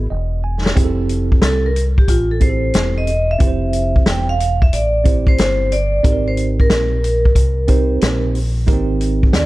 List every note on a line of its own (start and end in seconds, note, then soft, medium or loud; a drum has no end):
0.10 0.73 E1 medium
0.10 0.41 D#5 medium
0.44 0.74 G#5 medium
0.66 snare medium
0.75 1.39 F1 loud
0.75 1.69 C4 medium
0.75 1.70 E4 medium
0.75 1.70 G4 medium
0.75 0.86 G#4 medium
0.75 kick loud
0.75 closed hi-hat medium
0.84 1.74 A4 medium
1.09 closed hi-hat medium
1.32 kick medium
1.42 2.05 C2 medium
1.42 1.66 A4 medium
1.42 snare loud
1.42 closed hi-hat medium
1.66 1.81 A#4 medium
1.76 closed hi-hat medium
1.98 2.10 G4 medium
1.98 kick medium
2.08 2.71 A1 medium
2.08 2.29 F4 medium
2.08 kick medium
2.08 closed hi-hat medium
2.31 2.42 A4 medium
2.40 3.10 C4 medium
2.40 3.10 E4 medium
2.40 3.11 G4 medium
2.40 2.51 G#4 medium
2.40 2.98 C5 medium
2.40 kick medium
2.40 closed hi-hat medium
2.49 3.14 A4 medium
2.74 3.37 E1 medium
2.74 snare loud
2.74 closed hi-hat medium
2.98 3.31 D#5 medium
3.07 closed hi-hat medium
3.31 4.03 E5 loud
3.39 4.03 F1 loud
3.39 4.33 C4 medium
3.39 4.34 E4 medium
3.39 4.34 G4 medium
3.39 3.49 B4 medium
3.39 kick loud
3.39 closed hi-hat medium
3.48 4.38 C5 medium
3.73 closed hi-hat medium
3.96 kick medium
4.06 4.69 E1 medium
4.06 4.18 G5 medium
4.06 snare loud
4.06 closed hi-hat medium
4.29 4.59 F5 medium
4.40 closed hi-hat medium
4.62 4.72 E5 loud
4.62 kick medium
4.73 5.35 A1 loud
4.73 5.29 D5 loud
4.73 closed hi-hat medium
5.04 5.74 C4 medium
5.04 5.74 E4 medium
5.04 5.75 G4 medium
5.04 5.75 C5 medium
5.04 kick medium
5.04 closed hi-hat medium
5.27 5.73 C5 medium
5.27 kick medium
5.38 6.01 G1 medium
5.38 snare loud
5.38 closed hi-hat medium
5.72 6.28 D5 loud
5.72 closed hi-hat medium
6.03 6.67 G#1 loud
6.03 6.97 C4 medium
6.03 6.98 D#4 medium
6.03 6.98 G4 medium
6.03 6.13 A4 medium
6.03 kick loud
6.03 closed hi-hat medium
6.12 7.02 A#4 medium
6.28 6.42 C5 medium
6.37 closed hi-hat medium
6.60 8.21 A#4 medium
6.60 kick medium
6.70 7.33 A#1 medium
6.70 snare loud
6.70 closed hi-hat medium
7.04 closed hi-hat medium
7.25 kick medium
7.35 7.98 C2 medium
7.35 kick medium
7.35 closed hi-hat medium
7.68 8.37 C4 medium
7.68 8.38 D#4 medium
7.68 8.38 G4 medium
7.68 8.39 C5 medium
7.68 kick medium
7.68 closed hi-hat medium
8.01 8.65 A#1 medium
8.01 snare loud
8.01 closed hi-hat medium
8.35 open hi-hat medium
8.67 9.30 G#1 loud
8.67 8.76 A#3 medium
8.67 9.46 D#4 medium
8.67 9.46 G4 medium
8.67 9.46 A#4 medium
8.67 kick loud
8.67 closed hi-hat medium
8.73 9.46 C4 medium
9.01 closed hi-hat medium
9.23 kick medium
9.33 9.46 D#2 medium
9.33 9.46 D5 medium
9.33 snare loud
9.33 closed hi-hat medium